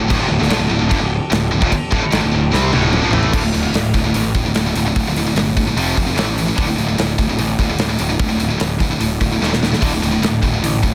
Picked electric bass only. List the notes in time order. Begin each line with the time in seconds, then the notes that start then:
0.10 D1
0.19 D#1
0.29 D1
0.40 D1
0.49 A#1
0.58 D1
0.70 D1
0.81 D1
0.91 G1
1.01 D1
1.32 D1
1.52 D1
1.62 D#1
1.73 muted picked electric bass stroke
1.92 D1
2.03 muted picked electric bass stroke
2.13 G#1
2.23 D1
2.33 D1
2.53 C2
2.74 D1
3.03 A#1
3.13 A1
3.34 D1
3.55 D1
3.74 D1
3.95 D1
4.15 A1
4.35 D1
4.56 D1
4.76 D1
4.96 D1
5.15 D1
5.35 G1
5.76 F1
5.97 F1
6.17 A1
6.58 D1
6.78 D1
6.97 D1
7.19 D1
7.38 A1
7.59 D1
7.79 D1
8.00 D1
8.20 D1
8.40 D1
8.61 D1
9.01 D1
9.21 D1
9.42 D#1
9.82 D1
10.01 D1
10.21 D1
10.43 D1
10.61 A1
10.83 D1